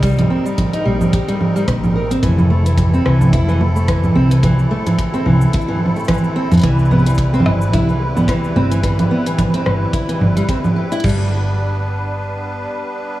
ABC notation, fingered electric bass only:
X:1
M:4/4
L:1/16
Q:"Swing 16ths" 1/4=109
K:Gmix
V:1 name="Fingered electric bass" clef=bass
C,, z4 z _B,,, z4 z B,,,3 z | F,,,4- F,,, z C,,2 F,,,4- F,,, z C,,2- | C,, z4 z C,, z8 F,, | C,,4- C,, z G,,,2 C,,4- C,, z G,,,2- |
G,,, z4 z G,,, z3 G,,, z4 z | G,,,12 z4 |]